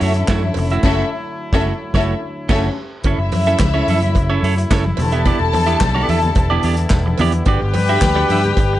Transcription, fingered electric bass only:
0.01 F#2
0.28 F#2
0.55 F1
0.84 F#1
1.53 F#1
1.94 F#1
2.49 F#1
3.04 F#1
3.18 F#1
3.32 F#2
3.60 C#2
3.88 F#2
4.16 F#1
4.42 F#2
4.71 F#1
4.98 E1
5.40 E1
5.53 E2
5.81 B1
6.08 E2
6.36 E1
6.63 E2
6.91 E1
7.19 E2
7.46 G1
7.62 G1
7.75 G2
8.02 D2
8.29 G2
8.57 G1

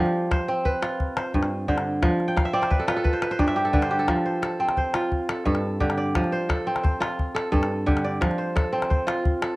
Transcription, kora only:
Already playing: F3 C4 F4 G4 C5
0.31 C5
0.48 C4
0.65 B4
0.82 F4
1.17 C5
1.34 G2
1.68 D3 C5
2.02 F3
2.28 G5
2.36 F5
2.45 E5
2.53 C4 D5
2.62 C5
2.70 B4
2.79 A4
2.88 F4 B4
2.97 A4
3.04 B4
3.13 C5
3.22 B4
3.31 C5
3.39 G2 D5
3.47 E5
3.56 G4
3.65 A4
3.73 D3 B4
3.82 C5
3.91 G4
3.99 A4
4.08 F3
4.26 C5
4.42 A4
4.60 C4
4.77 C5
4.94 F4
5.29 A4
5.45 G2 A4
5.80 D3 G4
5.97 D5
6.15 F3
6.32 C5
6.49 A4
6.67 C4
6.83 C5
7.00 F4
7.35 A4
7.52 G2 A4
7.86 D3 G4
8.04 D5
8.21 F3
8.38 C5
8.56 A4
8.73 C4
8.90 C5
9.07 F4
9.42 A4

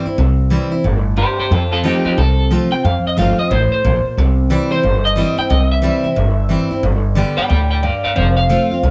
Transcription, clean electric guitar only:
1.18 G4 C5
1.39 G4 C5
1.52 F4 A4
1.72 F4 A4
1.84 D#4 G4
2.05 D#4 G4
2.18 A4
2.72 G5
2.85 F5
3.07 D#5
3.19 F5
3.39 D#5
3.51 C5
3.72 C5
4.72 C5
5.05 D#5
5.39 G5
5.50 D#5
5.72 E5
7.37 D5 G5
7.49 D5 G5
7.70 D5 G5
7.83 D5 F5
8.04 D5 F5
8.16 C5 F5
8.37 F5

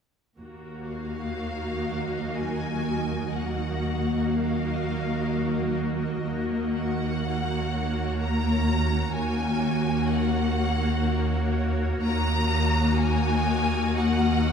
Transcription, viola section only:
0.39 A#3 F#4
3.33 A#3 F#4
6.23 A#3 F#4
9.15 A#3 F#4
12.03 A#3 F#4

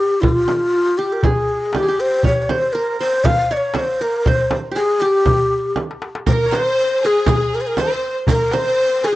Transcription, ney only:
Already playing: G4
0.21 E4
0.33 F4
0.98 G4
1.13 A#4
1.21 A4
1.26 G#4
1.75 G4 G#4
2.00 C5
2.27 C#5
2.42 C#5
2.50 C5
2.73 A#4
3.00 C5
3.25 F5
3.52 D5
3.57 C#5
3.75 C5 C#5
4.02 A#4
4.28 C5
4.76 G#4
5.01 G4
6.29 A#4 C5
6.55 C5
7.06 G#4
7.55 A#4
7.61 C5
7.67 A#4
7.81 C5
8.29 A#4
8.53 C5
9.05 G#4 A4

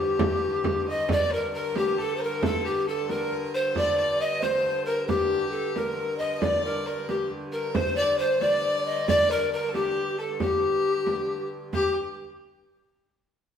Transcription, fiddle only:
Already playing: G4
0.88 D#5
1.10 D5
1.32 A#4
1.54 A#4
1.76 G4
1.98 A4
2.20 A#4
2.43 A4
2.65 G4
2.87 A4
3.09 A#4
3.54 C5
3.76 D5
3.98 D5
4.21 D#5
4.43 C5
4.88 A#4
5.10 G4
5.77 A#4
6.21 D#5
6.35 D#5
6.41 D5
6.86 A#4
7.10 G4
7.53 A#4
7.76 C5
7.98 D5
8.19 C5
8.41 D5
9.08 D5
9.31 A#4
9.53 A#4
9.69 A4
9.75 G4
10.19 A4
10.40 G4
11.74 G4

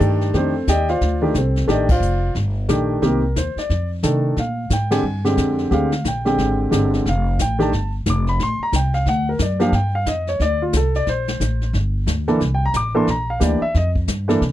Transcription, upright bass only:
0.00 G2
0.34 F2
0.67 D#2
1.01 D2
1.34 C2
1.68 A1
2.00 F1
2.35 G1
2.69 A#1
3.02 C2
3.36 D#2
3.56 muted upright bass stroke
3.70 F2
4.03 C3
4.37 A#2
4.70 G#2
5.03 G2
5.37 F2
5.71 D2
6.04 A#1
6.38 G#1
6.72 G1
7.06 F1
7.39 A1
7.72 G1
8.06 F1
8.39 A1
8.59 muted upright bass stroke
8.72 C2
9.06 D2
9.39 F#2
9.72 G2
10.06 F2
10.40 D2
10.73 C2
11.07 A#1
11.40 A1
11.73 G1
12.07 D2
12.40 C2
12.74 A1
13.07 A#1
13.40 D2
13.61 muted upright bass stroke
13.75 F2
14.08 G2
14.41 C3

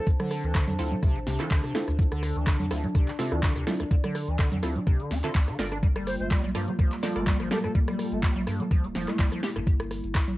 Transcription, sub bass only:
0.44 D2
0.68 F2
1.16 A1
1.27 C2
1.51 D2
1.88 D2
2.36 D2
2.60 F2
3.32 D2
3.56 D2
4.28 D2
4.52 F2
5.11 D2
5.59 G1
6.20 G1
6.44 A#1
7.16 G1
7.40 G1
8.12 G1
8.36 A#1
8.84 D1
8.95 F1
9.19 G1
9.56 G1
10.04 G1
10.28 A#1

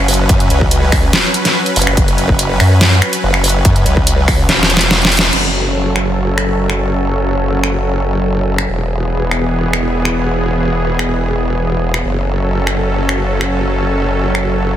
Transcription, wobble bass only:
Already playing: F#1
0.29 F#2
0.50 C#2
1.76 F#1
1.87 F#1
1.97 F#1
2.60 F#2
3.23 F#1
3.65 F#2
3.86 C#2
4.49 E1
5.33 F#1
8.69 E1
12.04 F#1

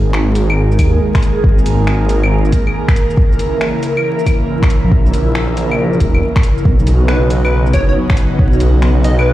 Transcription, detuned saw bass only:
Already playing: G#1
0.79 D#2
1.44 G#1
4.84 A#1
4.92 A#1
6.00 E1
6.65 B1
7.74 F#1
8.39 B1

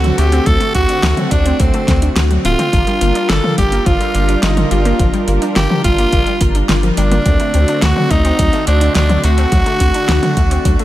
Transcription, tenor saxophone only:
Already playing: F#4
0.18 G4
0.46 A4
0.75 F#4
1.31 D4
1.60 C4
2.45 F4
3.30 A4
3.58 G4
3.86 F4
4.43 D#4
4.71 F4
5.56 G4
5.84 F4
6.98 D4
7.83 F#4
8.11 D#4
8.67 D4
8.95 D4
9.24 F#4

